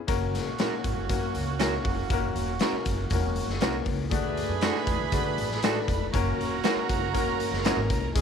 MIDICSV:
0, 0, Header, 1, 8, 480
1, 0, Start_track
1, 0, Tempo, 505051
1, 80, Time_signature, 4, 2, 24, 8
1, 7805, End_track
2, 0, Start_track
2, 0, Title_t, "Violin section"
2, 0, Program_c, 0, 48
2, 3904, Note_on_c, 0, 83, 93
2, 3905, Note_on_c, 0, 71, 81
2, 5791, Note_off_c, 0, 71, 0
2, 5791, Note_off_c, 0, 83, 0
2, 5832, Note_on_c, 0, 70, 84
2, 5839, Note_on_c, 0, 82, 91
2, 7717, Note_off_c, 0, 70, 0
2, 7721, Note_off_c, 0, 82, 0
2, 7749, Note_on_c, 0, 80, 98
2, 7752, Note_on_c, 0, 68, 99
2, 7805, Note_off_c, 0, 68, 0
2, 7805, Note_off_c, 0, 80, 0
2, 7805, End_track
3, 0, Start_track
3, 0, Title_t, "Clean electric guitar"
3, 0, Program_c, 1, 27
3, 571, Note_on_c, 1, 61, 74
3, 576, Note_on_c, 1, 66, 88
3, 585, Note_on_c, 1, 70, 75
3, 697, Note_off_c, 1, 61, 0
3, 699, Note_off_c, 1, 66, 0
3, 703, Note_off_c, 1, 70, 0
3, 1516, Note_on_c, 1, 61, 74
3, 1522, Note_on_c, 1, 66, 80
3, 1528, Note_on_c, 1, 70, 75
3, 1648, Note_off_c, 1, 61, 0
3, 1651, Note_off_c, 1, 66, 0
3, 1655, Note_off_c, 1, 70, 0
3, 2487, Note_on_c, 1, 61, 91
3, 2491, Note_on_c, 1, 66, 86
3, 2501, Note_on_c, 1, 70, 88
3, 2613, Note_off_c, 1, 61, 0
3, 2615, Note_off_c, 1, 66, 0
3, 2620, Note_off_c, 1, 70, 0
3, 3437, Note_on_c, 1, 61, 87
3, 3444, Note_on_c, 1, 66, 70
3, 3454, Note_on_c, 1, 70, 77
3, 3568, Note_off_c, 1, 61, 0
3, 3571, Note_off_c, 1, 66, 0
3, 3576, Note_off_c, 1, 70, 0
3, 4394, Note_on_c, 1, 62, 87
3, 4402, Note_on_c, 1, 66, 84
3, 4410, Note_on_c, 1, 69, 86
3, 4526, Note_off_c, 1, 62, 0
3, 4530, Note_off_c, 1, 66, 0
3, 4534, Note_off_c, 1, 69, 0
3, 5358, Note_on_c, 1, 62, 82
3, 5364, Note_on_c, 1, 66, 83
3, 5372, Note_on_c, 1, 69, 83
3, 5488, Note_off_c, 1, 62, 0
3, 5491, Note_off_c, 1, 66, 0
3, 5495, Note_off_c, 1, 69, 0
3, 6310, Note_on_c, 1, 61, 92
3, 6320, Note_on_c, 1, 66, 91
3, 6329, Note_on_c, 1, 70, 97
3, 6444, Note_off_c, 1, 61, 0
3, 6449, Note_off_c, 1, 66, 0
3, 6453, Note_off_c, 1, 70, 0
3, 7276, Note_on_c, 1, 61, 88
3, 7280, Note_on_c, 1, 66, 84
3, 7287, Note_on_c, 1, 70, 89
3, 7407, Note_off_c, 1, 61, 0
3, 7410, Note_off_c, 1, 66, 0
3, 7413, Note_off_c, 1, 70, 0
3, 7805, End_track
4, 0, Start_track
4, 0, Title_t, "Upright piano"
4, 0, Program_c, 2, 0
4, 69, Note_on_c, 2, 58, 90
4, 77, Note_on_c, 2, 61, 85
4, 83, Note_on_c, 2, 66, 89
4, 85, Note_on_c, 2, 70, 112
4, 453, Note_off_c, 2, 58, 0
4, 456, Note_off_c, 2, 61, 0
4, 459, Note_off_c, 2, 66, 0
4, 461, Note_off_c, 2, 70, 0
4, 554, Note_on_c, 2, 58, 74
4, 561, Note_on_c, 2, 61, 65
4, 563, Note_on_c, 2, 66, 68
4, 570, Note_on_c, 2, 70, 78
4, 935, Note_off_c, 2, 58, 0
4, 938, Note_off_c, 2, 61, 0
4, 939, Note_off_c, 2, 66, 0
4, 943, Note_off_c, 2, 70, 0
4, 1034, Note_on_c, 2, 58, 80
4, 1041, Note_on_c, 2, 61, 67
4, 1047, Note_on_c, 2, 66, 74
4, 1047, Note_on_c, 2, 70, 82
4, 1414, Note_off_c, 2, 58, 0
4, 1418, Note_off_c, 2, 61, 0
4, 1421, Note_off_c, 2, 66, 0
4, 1421, Note_off_c, 2, 70, 0
4, 1520, Note_on_c, 2, 58, 73
4, 1525, Note_on_c, 2, 61, 77
4, 1529, Note_on_c, 2, 66, 73
4, 1536, Note_on_c, 2, 70, 82
4, 1897, Note_off_c, 2, 58, 0
4, 1899, Note_off_c, 2, 61, 0
4, 1902, Note_off_c, 2, 66, 0
4, 1905, Note_off_c, 2, 70, 0
4, 2005, Note_on_c, 2, 58, 90
4, 2013, Note_on_c, 2, 61, 83
4, 2015, Note_on_c, 2, 66, 96
4, 2024, Note_on_c, 2, 70, 100
4, 2380, Note_off_c, 2, 58, 0
4, 2383, Note_off_c, 2, 61, 0
4, 2384, Note_off_c, 2, 66, 0
4, 2389, Note_off_c, 2, 70, 0
4, 2479, Note_on_c, 2, 58, 74
4, 2484, Note_on_c, 2, 61, 66
4, 2494, Note_on_c, 2, 66, 67
4, 2495, Note_on_c, 2, 70, 86
4, 2856, Note_off_c, 2, 58, 0
4, 2859, Note_off_c, 2, 61, 0
4, 2864, Note_off_c, 2, 66, 0
4, 2864, Note_off_c, 2, 70, 0
4, 2963, Note_on_c, 2, 58, 79
4, 2968, Note_on_c, 2, 61, 75
4, 2972, Note_on_c, 2, 66, 72
4, 2982, Note_on_c, 2, 70, 94
4, 3338, Note_off_c, 2, 58, 0
4, 3340, Note_off_c, 2, 61, 0
4, 3342, Note_off_c, 2, 66, 0
4, 3348, Note_off_c, 2, 70, 0
4, 3432, Note_on_c, 2, 58, 87
4, 3440, Note_on_c, 2, 61, 74
4, 3446, Note_on_c, 2, 66, 79
4, 3450, Note_on_c, 2, 70, 91
4, 3812, Note_off_c, 2, 58, 0
4, 3816, Note_off_c, 2, 61, 0
4, 3819, Note_off_c, 2, 66, 0
4, 3821, Note_off_c, 2, 70, 0
4, 3906, Note_on_c, 2, 57, 97
4, 3913, Note_on_c, 2, 62, 92
4, 3918, Note_on_c, 2, 66, 85
4, 4289, Note_off_c, 2, 57, 0
4, 4293, Note_off_c, 2, 62, 0
4, 4295, Note_off_c, 2, 66, 0
4, 4386, Note_on_c, 2, 57, 86
4, 4392, Note_on_c, 2, 62, 68
4, 4392, Note_on_c, 2, 64, 62
4, 4451, Note_off_c, 2, 64, 0
4, 4452, Note_on_c, 2, 66, 78
4, 4769, Note_off_c, 2, 57, 0
4, 4772, Note_off_c, 2, 62, 0
4, 4802, Note_off_c, 2, 66, 0
4, 4868, Note_on_c, 2, 57, 77
4, 4878, Note_on_c, 2, 62, 78
4, 4881, Note_on_c, 2, 66, 79
4, 4886, Note_on_c, 2, 68, 74
4, 4938, Note_off_c, 2, 68, 0
4, 5250, Note_off_c, 2, 57, 0
4, 5255, Note_off_c, 2, 62, 0
4, 5256, Note_off_c, 2, 66, 0
4, 5357, Note_on_c, 2, 57, 88
4, 5365, Note_on_c, 2, 62, 83
4, 5371, Note_on_c, 2, 66, 70
4, 5371, Note_on_c, 2, 69, 89
4, 5734, Note_off_c, 2, 57, 0
4, 5739, Note_off_c, 2, 62, 0
4, 5742, Note_off_c, 2, 66, 0
4, 5742, Note_off_c, 2, 69, 0
4, 5827, Note_on_c, 2, 58, 98
4, 5837, Note_on_c, 2, 61, 93
4, 5844, Note_on_c, 2, 66, 87
4, 5848, Note_on_c, 2, 70, 110
4, 6210, Note_off_c, 2, 58, 0
4, 6214, Note_off_c, 2, 61, 0
4, 6218, Note_off_c, 2, 66, 0
4, 6220, Note_off_c, 2, 70, 0
4, 6309, Note_on_c, 2, 58, 78
4, 6316, Note_on_c, 2, 61, 74
4, 6324, Note_on_c, 2, 66, 76
4, 6326, Note_on_c, 2, 70, 89
4, 6691, Note_off_c, 2, 58, 0
4, 6694, Note_off_c, 2, 61, 0
4, 6698, Note_off_c, 2, 66, 0
4, 6699, Note_off_c, 2, 70, 0
4, 6782, Note_on_c, 2, 58, 81
4, 6783, Note_on_c, 2, 61, 78
4, 6793, Note_on_c, 2, 66, 80
4, 6794, Note_on_c, 2, 70, 93
4, 7168, Note_off_c, 2, 58, 0
4, 7168, Note_off_c, 2, 61, 0
4, 7173, Note_off_c, 2, 66, 0
4, 7174, Note_off_c, 2, 70, 0
4, 7267, Note_on_c, 2, 58, 82
4, 7270, Note_on_c, 2, 61, 78
4, 7279, Note_on_c, 2, 66, 73
4, 7285, Note_on_c, 2, 70, 93
4, 7651, Note_off_c, 2, 58, 0
4, 7652, Note_off_c, 2, 61, 0
4, 7657, Note_off_c, 2, 66, 0
4, 7660, Note_off_c, 2, 70, 0
4, 7743, Note_on_c, 2, 56, 76
4, 7749, Note_on_c, 2, 61, 72
4, 7752, Note_on_c, 2, 64, 71
4, 7760, Note_on_c, 2, 68, 84
4, 7805, Note_off_c, 2, 56, 0
4, 7805, Note_off_c, 2, 61, 0
4, 7805, Note_off_c, 2, 64, 0
4, 7805, Note_off_c, 2, 68, 0
4, 7805, End_track
5, 0, Start_track
5, 0, Title_t, "Horn section"
5, 0, Program_c, 3, 61
5, 84, Note_on_c, 3, 66, 78
5, 86, Note_on_c, 3, 58, 69
5, 88, Note_on_c, 3, 61, 71
5, 3640, Note_off_c, 3, 66, 0
5, 3641, Note_off_c, 3, 58, 0
5, 3642, Note_off_c, 3, 61, 0
5, 3900, Note_on_c, 3, 57, 78
5, 3900, Note_on_c, 3, 68, 86
5, 3901, Note_on_c, 3, 62, 78
5, 5553, Note_off_c, 3, 57, 0
5, 5553, Note_off_c, 3, 68, 0
5, 5554, Note_off_c, 3, 62, 0
5, 5826, Note_on_c, 3, 58, 78
5, 5827, Note_on_c, 3, 66, 85
5, 5828, Note_on_c, 3, 61, 83
5, 7478, Note_off_c, 3, 58, 0
5, 7479, Note_off_c, 3, 61, 0
5, 7479, Note_off_c, 3, 66, 0
5, 7805, End_track
6, 0, Start_track
6, 0, Title_t, "Upright bass"
6, 0, Program_c, 4, 32
6, 74, Note_on_c, 4, 30, 98
6, 370, Note_off_c, 4, 30, 0
6, 441, Note_on_c, 4, 34, 72
6, 636, Note_off_c, 4, 34, 0
6, 799, Note_on_c, 4, 32, 90
6, 897, Note_off_c, 4, 32, 0
6, 915, Note_on_c, 4, 30, 76
6, 1015, Note_off_c, 4, 30, 0
6, 1043, Note_on_c, 4, 42, 95
6, 1237, Note_off_c, 4, 42, 0
6, 1281, Note_on_c, 4, 37, 82
6, 1672, Note_off_c, 4, 37, 0
6, 1754, Note_on_c, 4, 29, 88
6, 1952, Note_off_c, 4, 29, 0
6, 1999, Note_on_c, 4, 30, 95
6, 2194, Note_off_c, 4, 30, 0
6, 2238, Note_on_c, 4, 28, 87
6, 2434, Note_off_c, 4, 28, 0
6, 2713, Note_on_c, 4, 30, 90
6, 2911, Note_off_c, 4, 30, 0
6, 2953, Note_on_c, 4, 28, 112
6, 3248, Note_off_c, 4, 28, 0
6, 3301, Note_on_c, 4, 30, 88
6, 3405, Note_off_c, 4, 30, 0
6, 3431, Note_on_c, 4, 36, 83
6, 3629, Note_off_c, 4, 36, 0
6, 3669, Note_on_c, 4, 37, 85
6, 3868, Note_off_c, 4, 37, 0
6, 3912, Note_on_c, 4, 38, 106
6, 4207, Note_off_c, 4, 38, 0
6, 4265, Note_on_c, 4, 42, 86
6, 4465, Note_off_c, 4, 42, 0
6, 4632, Note_on_c, 4, 40, 85
6, 4731, Note_off_c, 4, 40, 0
6, 4747, Note_on_c, 4, 38, 91
6, 4848, Note_off_c, 4, 38, 0
6, 4871, Note_on_c, 4, 50, 104
6, 5069, Note_off_c, 4, 50, 0
6, 5105, Note_on_c, 4, 33, 93
6, 5501, Note_off_c, 4, 33, 0
6, 5591, Note_on_c, 4, 29, 83
6, 5789, Note_off_c, 4, 29, 0
6, 5828, Note_on_c, 4, 30, 106
6, 6027, Note_off_c, 4, 30, 0
6, 6065, Note_on_c, 4, 28, 79
6, 6265, Note_off_c, 4, 28, 0
6, 6549, Note_on_c, 4, 30, 88
6, 6790, Note_off_c, 4, 30, 0
6, 6790, Note_on_c, 4, 28, 98
6, 6989, Note_off_c, 4, 28, 0
6, 7140, Note_on_c, 4, 30, 92
6, 7343, Note_off_c, 4, 30, 0
6, 7382, Note_on_c, 4, 32, 101
6, 7486, Note_off_c, 4, 32, 0
6, 7505, Note_on_c, 4, 36, 101
6, 7706, Note_off_c, 4, 36, 0
6, 7749, Note_on_c, 4, 37, 99
6, 7805, Note_off_c, 4, 37, 0
6, 7805, End_track
7, 0, Start_track
7, 0, Title_t, "Muted upright bass strokes"
7, 2587, Note_on_c, 9, 29, 47
7, 2682, Note_off_c, 9, 29, 0
7, 6421, Note_on_c, 9, 29, 46
7, 6516, Note_off_c, 9, 29, 0
7, 7022, Note_on_c, 9, 29, 50
7, 7117, Note_off_c, 9, 29, 0
7, 7805, End_track
8, 0, Start_track
8, 0, Title_t, "Drums"
8, 76, Note_on_c, 9, 42, 91
8, 78, Note_on_c, 9, 36, 106
8, 171, Note_off_c, 9, 42, 0
8, 173, Note_off_c, 9, 36, 0
8, 328, Note_on_c, 9, 38, 29
8, 331, Note_on_c, 9, 42, 60
8, 423, Note_off_c, 9, 38, 0
8, 426, Note_off_c, 9, 42, 0
8, 555, Note_on_c, 9, 42, 74
8, 568, Note_on_c, 9, 38, 99
8, 650, Note_off_c, 9, 42, 0
8, 663, Note_off_c, 9, 38, 0
8, 800, Note_on_c, 9, 42, 70
8, 802, Note_on_c, 9, 36, 76
8, 895, Note_off_c, 9, 42, 0
8, 897, Note_off_c, 9, 36, 0
8, 1039, Note_on_c, 9, 42, 82
8, 1041, Note_on_c, 9, 36, 78
8, 1134, Note_off_c, 9, 42, 0
8, 1136, Note_off_c, 9, 36, 0
8, 1279, Note_on_c, 9, 42, 59
8, 1374, Note_off_c, 9, 42, 0
8, 1516, Note_on_c, 9, 42, 89
8, 1530, Note_on_c, 9, 38, 106
8, 1611, Note_off_c, 9, 42, 0
8, 1625, Note_off_c, 9, 38, 0
8, 1757, Note_on_c, 9, 36, 91
8, 1757, Note_on_c, 9, 46, 50
8, 1852, Note_off_c, 9, 36, 0
8, 1852, Note_off_c, 9, 46, 0
8, 1997, Note_on_c, 9, 36, 108
8, 1998, Note_on_c, 9, 42, 87
8, 2092, Note_off_c, 9, 36, 0
8, 2093, Note_off_c, 9, 42, 0
8, 2240, Note_on_c, 9, 42, 64
8, 2335, Note_off_c, 9, 42, 0
8, 2465, Note_on_c, 9, 42, 75
8, 2478, Note_on_c, 9, 38, 110
8, 2560, Note_off_c, 9, 42, 0
8, 2573, Note_off_c, 9, 38, 0
8, 2713, Note_on_c, 9, 42, 77
8, 2717, Note_on_c, 9, 36, 88
8, 2808, Note_off_c, 9, 42, 0
8, 2812, Note_off_c, 9, 36, 0
8, 2946, Note_on_c, 9, 42, 78
8, 2954, Note_on_c, 9, 36, 83
8, 3041, Note_off_c, 9, 42, 0
8, 3049, Note_off_c, 9, 36, 0
8, 3191, Note_on_c, 9, 42, 60
8, 3286, Note_off_c, 9, 42, 0
8, 3323, Note_on_c, 9, 38, 33
8, 3418, Note_off_c, 9, 38, 0
8, 3427, Note_on_c, 9, 42, 79
8, 3441, Note_on_c, 9, 38, 112
8, 3522, Note_off_c, 9, 42, 0
8, 3536, Note_off_c, 9, 38, 0
8, 3663, Note_on_c, 9, 46, 51
8, 3669, Note_on_c, 9, 36, 85
8, 3758, Note_off_c, 9, 46, 0
8, 3764, Note_off_c, 9, 36, 0
8, 3910, Note_on_c, 9, 36, 109
8, 3912, Note_on_c, 9, 42, 92
8, 4005, Note_off_c, 9, 36, 0
8, 4007, Note_off_c, 9, 42, 0
8, 4156, Note_on_c, 9, 42, 73
8, 4251, Note_off_c, 9, 42, 0
8, 4383, Note_on_c, 9, 42, 75
8, 4396, Note_on_c, 9, 38, 109
8, 4478, Note_off_c, 9, 42, 0
8, 4491, Note_off_c, 9, 38, 0
8, 4516, Note_on_c, 9, 38, 34
8, 4611, Note_off_c, 9, 38, 0
8, 4628, Note_on_c, 9, 42, 78
8, 4629, Note_on_c, 9, 36, 89
8, 4723, Note_off_c, 9, 42, 0
8, 4724, Note_off_c, 9, 36, 0
8, 4865, Note_on_c, 9, 42, 88
8, 4869, Note_on_c, 9, 36, 89
8, 4960, Note_off_c, 9, 42, 0
8, 4964, Note_off_c, 9, 36, 0
8, 5112, Note_on_c, 9, 42, 65
8, 5207, Note_off_c, 9, 42, 0
8, 5241, Note_on_c, 9, 38, 31
8, 5336, Note_off_c, 9, 38, 0
8, 5346, Note_on_c, 9, 42, 88
8, 5360, Note_on_c, 9, 38, 116
8, 5441, Note_off_c, 9, 42, 0
8, 5455, Note_off_c, 9, 38, 0
8, 5590, Note_on_c, 9, 36, 85
8, 5598, Note_on_c, 9, 42, 70
8, 5685, Note_off_c, 9, 36, 0
8, 5693, Note_off_c, 9, 42, 0
8, 5833, Note_on_c, 9, 36, 106
8, 5839, Note_on_c, 9, 42, 95
8, 5928, Note_off_c, 9, 36, 0
8, 5934, Note_off_c, 9, 42, 0
8, 6089, Note_on_c, 9, 42, 71
8, 6184, Note_off_c, 9, 42, 0
8, 6307, Note_on_c, 9, 42, 78
8, 6320, Note_on_c, 9, 38, 116
8, 6402, Note_off_c, 9, 42, 0
8, 6415, Note_off_c, 9, 38, 0
8, 6553, Note_on_c, 9, 36, 95
8, 6556, Note_on_c, 9, 42, 73
8, 6648, Note_off_c, 9, 36, 0
8, 6651, Note_off_c, 9, 42, 0
8, 6792, Note_on_c, 9, 36, 78
8, 6794, Note_on_c, 9, 42, 84
8, 6887, Note_off_c, 9, 36, 0
8, 6889, Note_off_c, 9, 42, 0
8, 7034, Note_on_c, 9, 42, 60
8, 7129, Note_off_c, 9, 42, 0
8, 7161, Note_on_c, 9, 38, 33
8, 7256, Note_off_c, 9, 38, 0
8, 7267, Note_on_c, 9, 42, 95
8, 7281, Note_on_c, 9, 38, 116
8, 7362, Note_off_c, 9, 42, 0
8, 7376, Note_off_c, 9, 38, 0
8, 7508, Note_on_c, 9, 42, 79
8, 7509, Note_on_c, 9, 36, 86
8, 7603, Note_off_c, 9, 42, 0
8, 7604, Note_off_c, 9, 36, 0
8, 7752, Note_on_c, 9, 36, 104
8, 7752, Note_on_c, 9, 42, 101
8, 7805, Note_off_c, 9, 36, 0
8, 7805, Note_off_c, 9, 42, 0
8, 7805, End_track
0, 0, End_of_file